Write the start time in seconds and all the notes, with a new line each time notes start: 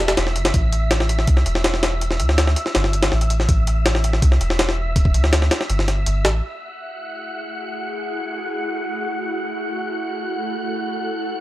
Already playing: E1 E5 E6
0.08 snare, closed hi-hat
0.17 E1, snare, closed hi-hat
0.27 snare
0.36 F#1, closed hi-hat
0.45 snare, closed hi-hat
0.54 A1, kick, closed hi-hat
0.73 closed hi-hat
0.91 snare, closed hi-hat
1.00 snare
1.09 closed hi-hat
1.19 snare
1.27 C2, kick, closed hi-hat
1.37 snare
1.46 E1, closed hi-hat
1.55 snare
1.64 snare, closed hi-hat
1.74 snare
1.83 snare, closed hi-hat
2.01 closed hi-hat
2.11 snare
2.20 D2, closed hi-hat
2.29 snare
2.38 snare, closed hi-hat
2.47 snare
2.56 closed hi-hat
2.66 snare
2.75 G1, snare, closed hi-hat
2.84 snare
2.93 closed hi-hat
3.03 snare, closed hi-hat
3.12 A1, snare
3.21 closed hi-hat
3.30 closed hi-hat
3.40 snare
3.49 A1, kick, closed hi-hat
3.67 closed hi-hat
3.86 snare, closed hi-hat
3.95 snare
4.04 closed hi-hat
4.13 snare
4.22 C2, kick, closed hi-hat
4.32 snare
4.41 E1, closed hi-hat
4.50 snare
4.59 snare, closed hi-hat
4.69 snare
4.96 kick, closed hi-hat
5.05 kick
5.14 D2, closed hi-hat
5.24 snare
5.33 snare, closed hi-hat
5.42 snare
5.51 snare, closed hi-hat
5.61 snare
5.69 G1, closed hi-hat
5.79 snare
5.88 snare, closed hi-hat
6.06 G1, closed hi-hat
6.24 A1, snare, closed hi-hat
6.43 A3 E4 F#4 G#4 F#5 F#6
9.38 A4